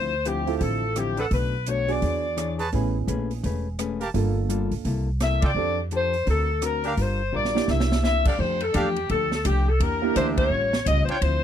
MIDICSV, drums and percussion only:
0, 0, Header, 1, 2, 480
1, 0, Start_track
1, 0, Key_signature, -1, "major"
1, 0, Tempo, 353565
1, 1777, Time_signature, 4, 2, 24, 8
1, 15526, End_track
2, 0, Start_track
2, 0, Title_t, "Drums"
2, 344, Note_on_c, 9, 42, 45
2, 480, Note_off_c, 9, 42, 0
2, 642, Note_on_c, 9, 46, 33
2, 777, Note_off_c, 9, 46, 0
2, 823, Note_on_c, 9, 36, 33
2, 823, Note_on_c, 9, 46, 43
2, 958, Note_off_c, 9, 36, 0
2, 959, Note_off_c, 9, 46, 0
2, 1299, Note_on_c, 9, 42, 47
2, 1304, Note_on_c, 9, 37, 55
2, 1435, Note_off_c, 9, 42, 0
2, 1439, Note_off_c, 9, 37, 0
2, 1592, Note_on_c, 9, 46, 34
2, 1728, Note_off_c, 9, 46, 0
2, 1778, Note_on_c, 9, 46, 43
2, 1781, Note_on_c, 9, 36, 33
2, 1913, Note_off_c, 9, 46, 0
2, 1916, Note_off_c, 9, 36, 0
2, 2259, Note_on_c, 9, 42, 46
2, 2394, Note_off_c, 9, 42, 0
2, 2557, Note_on_c, 9, 46, 31
2, 2693, Note_off_c, 9, 46, 0
2, 2743, Note_on_c, 9, 46, 40
2, 2745, Note_on_c, 9, 36, 30
2, 2879, Note_off_c, 9, 46, 0
2, 2880, Note_off_c, 9, 36, 0
2, 3224, Note_on_c, 9, 42, 46
2, 3229, Note_on_c, 9, 37, 64
2, 3360, Note_off_c, 9, 42, 0
2, 3364, Note_off_c, 9, 37, 0
2, 3519, Note_on_c, 9, 46, 38
2, 3654, Note_off_c, 9, 46, 0
2, 3698, Note_on_c, 9, 46, 39
2, 3704, Note_on_c, 9, 36, 30
2, 3834, Note_off_c, 9, 46, 0
2, 3840, Note_off_c, 9, 36, 0
2, 4183, Note_on_c, 9, 42, 46
2, 4319, Note_off_c, 9, 42, 0
2, 4490, Note_on_c, 9, 46, 31
2, 4626, Note_off_c, 9, 46, 0
2, 4668, Note_on_c, 9, 36, 30
2, 4669, Note_on_c, 9, 46, 40
2, 4803, Note_off_c, 9, 36, 0
2, 4805, Note_off_c, 9, 46, 0
2, 5143, Note_on_c, 9, 42, 54
2, 5147, Note_on_c, 9, 37, 65
2, 5279, Note_off_c, 9, 42, 0
2, 5283, Note_off_c, 9, 37, 0
2, 5441, Note_on_c, 9, 46, 37
2, 5577, Note_off_c, 9, 46, 0
2, 5625, Note_on_c, 9, 36, 30
2, 5625, Note_on_c, 9, 46, 45
2, 5761, Note_off_c, 9, 36, 0
2, 5761, Note_off_c, 9, 46, 0
2, 6104, Note_on_c, 9, 42, 49
2, 6240, Note_off_c, 9, 42, 0
2, 6401, Note_on_c, 9, 46, 33
2, 6537, Note_off_c, 9, 46, 0
2, 6582, Note_on_c, 9, 46, 38
2, 6585, Note_on_c, 9, 36, 32
2, 6717, Note_off_c, 9, 46, 0
2, 6721, Note_off_c, 9, 36, 0
2, 7064, Note_on_c, 9, 42, 48
2, 7068, Note_on_c, 9, 37, 60
2, 7068, Note_on_c, 9, 38, 38
2, 7200, Note_off_c, 9, 42, 0
2, 7204, Note_off_c, 9, 37, 0
2, 7204, Note_off_c, 9, 38, 0
2, 7361, Note_on_c, 9, 51, 73
2, 7366, Note_on_c, 9, 36, 75
2, 7497, Note_off_c, 9, 51, 0
2, 7502, Note_off_c, 9, 36, 0
2, 8025, Note_on_c, 9, 42, 43
2, 8161, Note_off_c, 9, 42, 0
2, 8327, Note_on_c, 9, 46, 30
2, 8463, Note_off_c, 9, 46, 0
2, 8509, Note_on_c, 9, 46, 38
2, 8511, Note_on_c, 9, 36, 28
2, 8645, Note_off_c, 9, 46, 0
2, 8647, Note_off_c, 9, 36, 0
2, 8985, Note_on_c, 9, 42, 55
2, 8989, Note_on_c, 9, 37, 59
2, 9121, Note_off_c, 9, 42, 0
2, 9125, Note_off_c, 9, 37, 0
2, 9283, Note_on_c, 9, 46, 36
2, 9419, Note_off_c, 9, 46, 0
2, 9466, Note_on_c, 9, 46, 41
2, 9469, Note_on_c, 9, 36, 31
2, 9602, Note_off_c, 9, 46, 0
2, 9604, Note_off_c, 9, 36, 0
2, 10112, Note_on_c, 9, 38, 45
2, 10248, Note_off_c, 9, 38, 0
2, 10272, Note_on_c, 9, 38, 60
2, 10408, Note_off_c, 9, 38, 0
2, 10424, Note_on_c, 9, 38, 51
2, 10559, Note_off_c, 9, 38, 0
2, 10593, Note_on_c, 9, 38, 67
2, 10728, Note_off_c, 9, 38, 0
2, 10750, Note_on_c, 9, 38, 80
2, 10886, Note_off_c, 9, 38, 0
2, 10913, Note_on_c, 9, 38, 54
2, 11049, Note_off_c, 9, 38, 0
2, 11205, Note_on_c, 9, 49, 70
2, 11208, Note_on_c, 9, 36, 74
2, 11340, Note_off_c, 9, 49, 0
2, 11344, Note_off_c, 9, 36, 0
2, 11389, Note_on_c, 9, 36, 20
2, 11525, Note_off_c, 9, 36, 0
2, 11682, Note_on_c, 9, 51, 46
2, 11818, Note_off_c, 9, 51, 0
2, 11864, Note_on_c, 9, 44, 53
2, 11864, Note_on_c, 9, 51, 69
2, 11870, Note_on_c, 9, 36, 19
2, 12000, Note_off_c, 9, 44, 0
2, 12000, Note_off_c, 9, 51, 0
2, 12006, Note_off_c, 9, 36, 0
2, 12168, Note_on_c, 9, 51, 42
2, 12304, Note_off_c, 9, 51, 0
2, 12346, Note_on_c, 9, 51, 49
2, 12350, Note_on_c, 9, 36, 18
2, 12482, Note_off_c, 9, 51, 0
2, 12486, Note_off_c, 9, 36, 0
2, 12649, Note_on_c, 9, 38, 47
2, 12784, Note_off_c, 9, 38, 0
2, 12826, Note_on_c, 9, 44, 71
2, 12826, Note_on_c, 9, 51, 73
2, 12831, Note_on_c, 9, 36, 24
2, 12962, Note_off_c, 9, 44, 0
2, 12962, Note_off_c, 9, 51, 0
2, 12967, Note_off_c, 9, 36, 0
2, 13310, Note_on_c, 9, 36, 24
2, 13310, Note_on_c, 9, 51, 64
2, 13445, Note_off_c, 9, 51, 0
2, 13446, Note_off_c, 9, 36, 0
2, 13791, Note_on_c, 9, 36, 22
2, 13791, Note_on_c, 9, 44, 51
2, 13791, Note_on_c, 9, 51, 59
2, 13926, Note_off_c, 9, 44, 0
2, 13926, Note_off_c, 9, 51, 0
2, 13927, Note_off_c, 9, 36, 0
2, 14085, Note_on_c, 9, 51, 64
2, 14089, Note_on_c, 9, 36, 80
2, 14220, Note_off_c, 9, 51, 0
2, 14225, Note_off_c, 9, 36, 0
2, 14570, Note_on_c, 9, 38, 63
2, 14705, Note_off_c, 9, 38, 0
2, 14748, Note_on_c, 9, 44, 61
2, 14748, Note_on_c, 9, 51, 71
2, 14749, Note_on_c, 9, 36, 26
2, 14883, Note_off_c, 9, 44, 0
2, 14883, Note_off_c, 9, 51, 0
2, 14884, Note_off_c, 9, 36, 0
2, 15049, Note_on_c, 9, 51, 45
2, 15185, Note_off_c, 9, 51, 0
2, 15228, Note_on_c, 9, 51, 65
2, 15229, Note_on_c, 9, 36, 23
2, 15363, Note_off_c, 9, 51, 0
2, 15365, Note_off_c, 9, 36, 0
2, 15526, End_track
0, 0, End_of_file